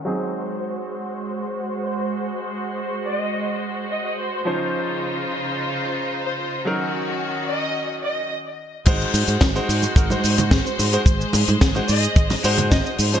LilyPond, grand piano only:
\new Staff \with { instrumentName = "Grand piano" } { \time 4/4 \key aes \mixolydian \tempo 4 = 109 <ges c' ees' aes'>1~ | <ges c' ees' aes'>1 | <f des' ees' c''>1 | <ges des' ees' bes'>2. r4 |
<aes ees' ges' c''>4~ <aes ees' ges' c''>16 <aes ees' ges' c''>8. <aes ees' ges' bes'>16 <aes ees' ges' c''>4. <aes ees' ges' c''>16 | r4 r16 <aes ees' ges' c''>16 r4 <aes ees' ges' c''>4~ <aes ees' ges' c''>16 <f des' ees' c''>16 | }